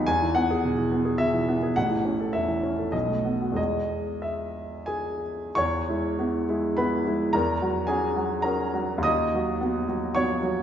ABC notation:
X:1
M:3/4
L:1/16
Q:1/4=105
K:E
V:1 name="Grand piano"
g2 f6 e2 z2 | f4 e4 d4 | d4 e4 [Gg]4 | [cc']8 [Bb]4 |
[^A^a]4 [Gg]4 [Aa]4 | [dd']8 [cc']4 |]
V:2 name="Grand piano"
E,, E, B, G B,, E, B, G B,, E, B, G | A,,, E, C A E,, E, C A B,,, A, B, F | [E,,G,B,G]12 | E,,2 [G,E]2 [B,E]2 [G,E]2 [B,E]2 [G,E]2 |
E,,2 [F,F]2 [CF]2 [F,F]2 [CF]2 [F,F]2 | D,,2 [F,F]2 [B,F]2 [F,F]2 [B,F]2 [F,F]2 |]